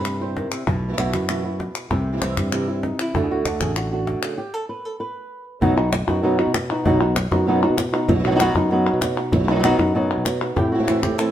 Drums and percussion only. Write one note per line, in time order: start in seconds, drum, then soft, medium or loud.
0.05 clap medium
0.37 cajon slap medium
0.52 clap medium
0.67 cajon bass medium
0.67 clap soft
0.98 cajon slap medium
0.98 clap medium
1.14 cajon bass medium
1.14 clap medium
1.29 clap medium
1.60 cajon slap medium
1.75 clap medium
1.91 cajon bass medium
1.91 cajon slap soft
1.91 clap soft
2.22 cajon slap medium
2.22 clap medium
2.37 cajon bass medium
2.37 clap medium
2.52 clap medium
2.83 cajon slap medium
2.99 clap medium
3.15 cajon bass medium
3.45 cajon slap medium
3.45 clap medium
3.61 cajon bass medium
3.61 clap medium
3.76 clap medium
4.07 cajon slap medium
4.23 clap medium
5.62 cajon bass loud
5.93 cajon slap loud
5.93 clap medium
6.08 cajon bass medium
6.08 cajon slap soft
6.08 clap soft
6.39 clap soft
6.54 cajon slap medium
6.54 clap medium
6.70 clap soft
6.86 cajon bass medium
7.16 cajon slap loud
7.16 clap medium
7.32 cajon bass medium
7.32 clap soft
7.62 cajon slap soft
7.78 cajon slap medium
7.78 clap medium
7.94 clap soft
8.09 cajon bass medium
8.39 cajon slap loud
8.39 clap medium
8.55 cajon bass medium
8.55 clap soft
8.70 cajon slap soft
8.86 clap soft
9.01 cajon slap loud
9.01 clap medium
9.17 clap soft
9.32 cajon bass medium
9.63 cajon slap loud
9.63 clap medium
9.79 cajon bass medium
9.79 cajon slap soft
9.79 clap soft
9.95 cajon slap soft
10.11 clap soft
10.25 cajon slap medium
10.25 clap medium
10.41 clap soft
10.57 cajon bass medium
10.57 clap soft
10.88 cajon slap medium
10.88 clap medium
11.03 cajon bass medium
11.03 clap medium
11.19 clap medium